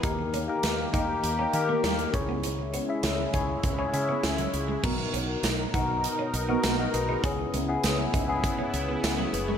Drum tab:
CC |----------------|----------------|x---------------|----------------|
HH |x-x-x-x-x-x-xxx-|x-x-x-x-x-x-xxx-|--x-x-x-x-x-x-x-|x-x-x-x-x-x-x-x-|
TB |----------------|----------------|----x-------x---|----x-------x---|
SD |----o-------o---|----o-------o---|----o-------o---|----o-------o---|
BD |o-----o-------o-|------o-o-------|o-----o---------|o-----o-o-------|